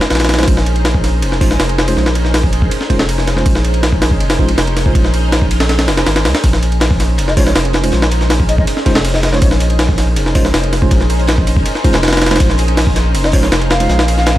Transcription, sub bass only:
0.11 0.46 A#1 medium
0.48 1.24 A#1 loud
1.22 1.43 F1 medium
1.41 1.58 A#1 loud
1.60 1.95 F1 loud
1.97 2.70 A#1 loud
2.99 3.44 F1 loud
3.46 4.22 A#1 loud
4.20 4.40 F1 medium
4.39 4.56 A#1 loud
4.58 4.93 F1 loud
4.95 5.90 A#1 medium
5.88 6.05 F1 medium
6.07 6.27 G#1 loud
6.25 6.34 C#2 loud
6.44 7.20 A#1 loud
7.18 7.39 F1 medium
7.37 7.54 A#1 loud
7.56 7.91 F1 loud
7.93 8.66 A#1 loud
8.96 9.41 F1 loud
9.42 10.18 A#1 loud
10.17 10.37 F1 medium
10.35 10.52 A#1 loud
10.54 10.90 F1 loud
10.91 11.64 A#1 loud
11.94 12.39 F1 loud
12.40 13.16 A#1 loud
13.15 13.35 F1 medium
13.33 13.50 A#1 loud
13.52 13.88 F1 loud
13.89 14.38 A#1 loud

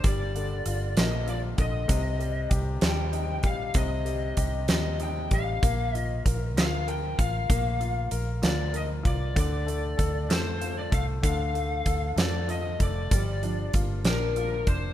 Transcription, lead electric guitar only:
0.06 0.98 D5 medium
0.99 1.29 D#5 medium
1.30 1.38 D5 medium
1.60 2.48 D#5 medium
2.86 3.47 G5 medium
3.46 3.74 F5 medium
3.77 4.65 D#5 medium
4.71 4.99 D#5 medium
5.03 5.34 G5 medium
5.34 5.97 F5 medium
5.97 6.22 D#5 medium
6.59 6.90 F5 medium
6.88 7.20 G5 medium
7.19 8.08 F5 medium
8.46 8.76 D5 medium
8.76 8.84 D#5 medium
9.07 9.38 D5 medium
9.40 10.34 D5 medium
10.32 10.74 C5 medium
10.78 10.93 D5 medium
10.94 11.02 F5 medium
11.25 12.14 F5 loud
12.18 12.50 D5 medium
12.50 12.79 D#5 medium
12.83 13.71 D5 medium
14.07 14.64 A#4 medium
14.68 14.93 C5 medium

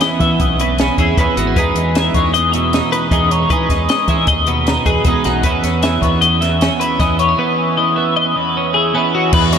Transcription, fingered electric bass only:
0.20 0.36 E3 medium
0.40 0.89 B1 medium
0.98 1.14 E2 medium
1.17 1.26 E2 medium
1.37 1.53 G#1 medium
1.56 1.73 E2 loud
1.75 2.08 E2 medium
2.15 2.80 E2 loud
3.11 3.44 E2 medium
3.50 3.66 E3 loud
3.69 3.86 E2 medium
4.08 4.25 E3 medium
4.27 4.77 D#2 medium
4.86 5.03 E2 medium
5.05 5.13 E2 medium
5.25 5.42 B1 medium
5.44 5.61 E2 loud
5.64 5.97 E2 medium
6.02 6.68 E2 medium
7.00 7.33 E2 medium
9.33 9.58 E2 loud

